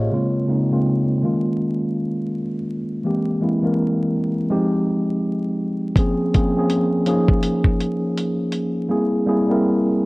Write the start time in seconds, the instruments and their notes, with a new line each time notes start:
Already playing: tine electric piano A#3 C#4 G4 G#4 C5 C#5 D#5 E5 F5
0.00 tine electric piano F4
0.11 tine electric piano C#3 G#3 A#3 C4 F4
0.47 tine electric piano C#3 G#3 A#3 C4 D#4
0.70 tine electric piano C#3 G#3 A#3 C4 F4
1.23 tine electric piano D#3 G#3 A#3 C#4 F4
3.04 tine electric piano E3 G#3 A#3 C4 G4
3.41 tine electric piano E3 G#3 A#3 C4 E4
3.63 tine electric piano E3 G#3 A#3 C4 A#4
4.50 tine electric piano F3 G#3 C4 D#4 G4
5.96 tine electric piano F3 A#3 C4 C#4 G#4, kick, closed hi-hat
6.34 tine electric piano F3 A#3 C4 C#4 G#4, kick, closed hi-hat
6.56 tine electric piano F3 A#3 C4 C#4 G#4
6.70 closed hi-hat
7.06 tine electric piano F3 A#3 C#4 D#4 G#4, closed hi-hat
7.29 kick
7.43 closed hi-hat
7.64 kick
7.81 closed hi-hat
8.18 closed hi-hat
8.52 closed hi-hat
8.89 tine electric piano G3 A#3 C4 E4 G#4
9.26 tine electric piano G3 A#3 C4 E4 G#4
9.49 tine electric piano G3 A#3 C4 E4 A#4